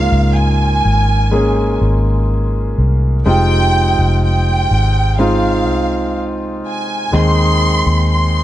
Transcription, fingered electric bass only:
0, 0, Header, 1, 2, 480
1, 0, Start_track
1, 0, Tempo, 967742
1, 1617, Time_signature, 4, 2, 24, 8
1, 4184, End_track
2, 0, Start_track
2, 0, Title_t, "Fingered electric bass"
2, 0, Program_c, 0, 33
2, 60, Note_on_c, 0, 37, 82
2, 399, Note_off_c, 0, 37, 0
2, 422, Note_on_c, 0, 32, 69
2, 880, Note_off_c, 0, 32, 0
2, 899, Note_on_c, 0, 32, 71
2, 1358, Note_off_c, 0, 32, 0
2, 1380, Note_on_c, 0, 36, 62
2, 1602, Note_off_c, 0, 36, 0
2, 1618, Note_on_c, 0, 29, 84
2, 1958, Note_off_c, 0, 29, 0
2, 1978, Note_on_c, 0, 29, 84
2, 2318, Note_off_c, 0, 29, 0
2, 2336, Note_on_c, 0, 32, 66
2, 2817, Note_off_c, 0, 32, 0
2, 2817, Note_on_c, 0, 36, 66
2, 3277, Note_off_c, 0, 36, 0
2, 3538, Note_on_c, 0, 39, 85
2, 3878, Note_off_c, 0, 39, 0
2, 3901, Note_on_c, 0, 39, 74
2, 4184, Note_off_c, 0, 39, 0
2, 4184, End_track
0, 0, End_of_file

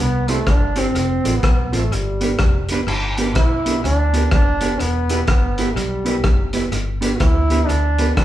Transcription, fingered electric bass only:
0, 0, Header, 1, 2, 480
1, 0, Start_track
1, 0, Key_signature, 1, "major"
1, 0, Tempo, 481541
1, 944, Time_signature, 4, 2, 24, 8
1, 8221, End_track
2, 0, Start_track
2, 0, Title_t, "Fingered electric bass"
2, 0, Program_c, 0, 33
2, 0, Note_on_c, 0, 36, 112
2, 386, Note_off_c, 0, 36, 0
2, 460, Note_on_c, 0, 31, 87
2, 870, Note_off_c, 0, 31, 0
2, 939, Note_on_c, 0, 29, 97
2, 1193, Note_off_c, 0, 29, 0
2, 1238, Note_on_c, 0, 33, 85
2, 1395, Note_off_c, 0, 33, 0
2, 1426, Note_on_c, 0, 35, 86
2, 1677, Note_off_c, 0, 35, 0
2, 1728, Note_on_c, 0, 33, 82
2, 1880, Note_off_c, 0, 33, 0
2, 1902, Note_on_c, 0, 31, 99
2, 2311, Note_off_c, 0, 31, 0
2, 2384, Note_on_c, 0, 29, 81
2, 2792, Note_off_c, 0, 29, 0
2, 2859, Note_on_c, 0, 31, 93
2, 3347, Note_off_c, 0, 31, 0
2, 3347, Note_on_c, 0, 35, 86
2, 3753, Note_off_c, 0, 35, 0
2, 3829, Note_on_c, 0, 38, 98
2, 4235, Note_off_c, 0, 38, 0
2, 4304, Note_on_c, 0, 30, 86
2, 4712, Note_off_c, 0, 30, 0
2, 4785, Note_on_c, 0, 28, 97
2, 5192, Note_off_c, 0, 28, 0
2, 5260, Note_on_c, 0, 31, 84
2, 5669, Note_off_c, 0, 31, 0
2, 5737, Note_on_c, 0, 35, 92
2, 6147, Note_off_c, 0, 35, 0
2, 6220, Note_on_c, 0, 30, 96
2, 6629, Note_off_c, 0, 30, 0
2, 6693, Note_on_c, 0, 31, 100
2, 7104, Note_off_c, 0, 31, 0
2, 7179, Note_on_c, 0, 38, 87
2, 7588, Note_off_c, 0, 38, 0
2, 7657, Note_on_c, 0, 38, 87
2, 8067, Note_off_c, 0, 38, 0
2, 8144, Note_on_c, 0, 30, 93
2, 8221, Note_off_c, 0, 30, 0
2, 8221, End_track
0, 0, End_of_file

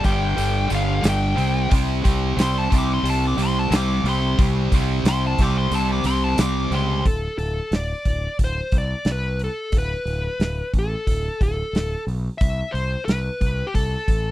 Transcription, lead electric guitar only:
0, 0, Header, 1, 2, 480
1, 0, Start_track
1, 0, Tempo, 667408
1, 1233, Time_signature, 4, 2, 24, 8
1, 10295, End_track
2, 0, Start_track
2, 0, Title_t, "Lead electric guitar"
2, 0, Program_c, 0, 29
2, 36, Note_on_c, 0, 79, 93
2, 500, Note_off_c, 0, 79, 0
2, 538, Note_on_c, 0, 77, 97
2, 759, Note_off_c, 0, 77, 0
2, 784, Note_on_c, 0, 79, 105
2, 1234, Note_off_c, 0, 79, 0
2, 1738, Note_on_c, 0, 84, 119
2, 1841, Note_off_c, 0, 84, 0
2, 1858, Note_on_c, 0, 81, 94
2, 1961, Note_off_c, 0, 81, 0
2, 2002, Note_on_c, 0, 86, 104
2, 2094, Note_off_c, 0, 86, 0
2, 2114, Note_on_c, 0, 84, 96
2, 2209, Note_off_c, 0, 84, 0
2, 2227, Note_on_c, 0, 81, 99
2, 2326, Note_off_c, 0, 81, 0
2, 2356, Note_on_c, 0, 86, 104
2, 2450, Note_off_c, 0, 86, 0
2, 2470, Note_on_c, 0, 84, 102
2, 2567, Note_off_c, 0, 84, 0
2, 2583, Note_on_c, 0, 81, 100
2, 2683, Note_off_c, 0, 81, 0
2, 2702, Note_on_c, 0, 86, 95
2, 2919, Note_off_c, 0, 86, 0
2, 2941, Note_on_c, 0, 84, 112
2, 3158, Note_off_c, 0, 84, 0
2, 3658, Note_on_c, 0, 84, 115
2, 3760, Note_off_c, 0, 84, 0
2, 3789, Note_on_c, 0, 81, 100
2, 3886, Note_off_c, 0, 81, 0
2, 3909, Note_on_c, 0, 86, 94
2, 4006, Note_off_c, 0, 86, 0
2, 4013, Note_on_c, 0, 84, 99
2, 4136, Note_off_c, 0, 84, 0
2, 4136, Note_on_c, 0, 81, 98
2, 4239, Note_off_c, 0, 81, 0
2, 4262, Note_on_c, 0, 86, 94
2, 4360, Note_off_c, 0, 86, 0
2, 4363, Note_on_c, 0, 84, 112
2, 4472, Note_off_c, 0, 84, 0
2, 4487, Note_on_c, 0, 81, 93
2, 4594, Note_off_c, 0, 81, 0
2, 4603, Note_on_c, 0, 86, 97
2, 4829, Note_off_c, 0, 86, 0
2, 4853, Note_on_c, 0, 84, 103
2, 5074, Note_off_c, 0, 84, 0
2, 5078, Note_on_c, 0, 69, 77
2, 5297, Note_off_c, 0, 69, 0
2, 5312, Note_on_c, 0, 69, 74
2, 5558, Note_off_c, 0, 69, 0
2, 5579, Note_on_c, 0, 74, 81
2, 6017, Note_off_c, 0, 74, 0
2, 6072, Note_on_c, 0, 72, 80
2, 6299, Note_off_c, 0, 72, 0
2, 6315, Note_on_c, 0, 74, 78
2, 6540, Note_off_c, 0, 74, 0
2, 6558, Note_on_c, 0, 71, 75
2, 6761, Note_off_c, 0, 71, 0
2, 6789, Note_on_c, 0, 69, 74
2, 7018, Note_off_c, 0, 69, 0
2, 7036, Note_on_c, 0, 71, 80
2, 7708, Note_off_c, 0, 71, 0
2, 7758, Note_on_c, 0, 69, 72
2, 8212, Note_off_c, 0, 69, 0
2, 8220, Note_on_c, 0, 69, 63
2, 8661, Note_off_c, 0, 69, 0
2, 8903, Note_on_c, 0, 76, 92
2, 9150, Note_on_c, 0, 72, 85
2, 9159, Note_off_c, 0, 76, 0
2, 9377, Note_off_c, 0, 72, 0
2, 9387, Note_on_c, 0, 71, 83
2, 9831, Note_on_c, 0, 67, 63
2, 9836, Note_off_c, 0, 71, 0
2, 9880, Note_off_c, 0, 67, 0
2, 9885, Note_on_c, 0, 69, 80
2, 10295, Note_off_c, 0, 69, 0
2, 10295, End_track
0, 0, End_of_file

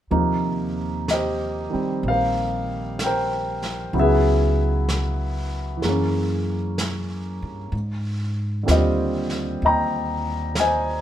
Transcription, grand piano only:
0, 0, Header, 1, 2, 480
1, 0, Start_track
1, 0, Key_signature, -3, "major"
1, 0, Tempo, 949367
1, 64, Time_signature, 4, 2, 24, 8
1, 5568, End_track
2, 0, Start_track
2, 0, Title_t, "Grand piano"
2, 0, Program_c, 0, 0
2, 53, Note_on_c, 0, 53, 42
2, 56, Note_on_c, 0, 48, 41
2, 57, Note_on_c, 0, 58, 43
2, 62, Note_on_c, 0, 63, 46
2, 153, Control_c, 0, 64, 127
2, 559, Note_on_c, 0, 75, 62
2, 570, Note_on_c, 0, 67, 48
2, 572, Note_on_c, 0, 72, 45
2, 859, Note_on_c, 0, 51, 31
2, 868, Note_on_c, 0, 55, 30
2, 875, Note_on_c, 0, 60, 34
2, 1051, Note_off_c, 0, 72, 0
2, 1052, Note_on_c, 0, 77, 73
2, 1053, Note_off_c, 0, 75, 0
2, 1059, Note_on_c, 0, 72, 46
2, 1062, Note_on_c, 0, 70, 48
2, 1503, Note_off_c, 0, 77, 0
2, 1504, Note_off_c, 0, 67, 0
2, 1538, Note_on_c, 0, 79, 71
2, 1539, Note_off_c, 0, 70, 0
2, 1540, Note_off_c, 0, 72, 0
2, 1546, Note_on_c, 0, 70, 57
2, 1547, Note_on_c, 0, 72, 54
2, 1986, Note_off_c, 0, 79, 0
2, 1987, Note_off_c, 0, 51, 0
2, 1989, Note_off_c, 0, 53, 0
2, 1990, Note_off_c, 0, 48, 0
2, 1990, Note_off_c, 0, 58, 0
2, 1990, Note_off_c, 0, 70, 0
2, 1990, Note_off_c, 0, 72, 0
2, 1991, Note_off_c, 0, 55, 0
2, 1991, Note_on_c, 0, 49, 47
2, 1992, Note_on_c, 0, 54, 42
2, 1993, Note_off_c, 0, 63, 0
2, 1994, Note_on_c, 0, 59, 44
2, 1995, Note_off_c, 0, 60, 0
2, 1995, Note_on_c, 0, 64, 50
2, 1999, Control_c, 0, 64, 0
2, 2019, Note_on_c, 0, 68, 53
2, 2020, Note_on_c, 0, 76, 69
2, 2026, Note_on_c, 0, 71, 49
2, 2083, Control_c, 0, 64, 127
2, 2918, Note_on_c, 0, 52, 41
2, 2932, Note_off_c, 0, 68, 0
2, 2940, Note_on_c, 0, 68, 33
2, 2945, Note_off_c, 0, 76, 0
2, 2948, Note_off_c, 0, 71, 0
2, 2950, Note_off_c, 0, 49, 0
2, 2951, Note_off_c, 0, 54, 0
2, 2952, Note_off_c, 0, 59, 0
2, 2952, Note_off_c, 0, 64, 0
2, 2955, Note_on_c, 0, 58, 40
2, 2958, Control_c, 0, 64, 0
2, 2977, Note_on_c, 0, 61, 44
2, 3035, Control_c, 0, 64, 127
2, 3891, Note_off_c, 0, 52, 0
2, 3902, Note_off_c, 0, 68, 0
2, 3909, Note_off_c, 0, 58, 0
2, 3914, Control_c, 0, 64, 0
2, 3920, Note_off_c, 0, 61, 0
2, 3992, Control_c, 0, 64, 127
2, 4365, Note_on_c, 0, 50, 41
2, 4376, Note_on_c, 0, 55, 37
2, 4381, Note_on_c, 0, 60, 38
2, 4387, Note_on_c, 0, 65, 45
2, 4401, Note_on_c, 0, 67, 44
2, 4402, Note_on_c, 0, 72, 46
2, 4405, Note_on_c, 0, 75, 64
2, 4854, Note_off_c, 0, 75, 0
2, 4879, Note_on_c, 0, 75, 50
2, 4881, Note_on_c, 0, 79, 54
2, 4884, Note_on_c, 0, 82, 69
2, 5330, Note_off_c, 0, 67, 0
2, 5330, Note_off_c, 0, 72, 0
2, 5332, Note_off_c, 0, 82, 0
2, 5352, Note_off_c, 0, 75, 0
2, 5358, Note_on_c, 0, 80, 80
2, 5360, Note_on_c, 0, 75, 55
2, 5365, Note_on_c, 0, 72, 47
2, 5568, Note_off_c, 0, 50, 0
2, 5568, Note_off_c, 0, 55, 0
2, 5568, Note_off_c, 0, 60, 0
2, 5568, Note_off_c, 0, 65, 0
2, 5568, Note_off_c, 0, 72, 0
2, 5568, Note_off_c, 0, 75, 0
2, 5568, Note_off_c, 0, 79, 0
2, 5568, Note_off_c, 0, 80, 0
2, 5568, End_track
0, 0, End_of_file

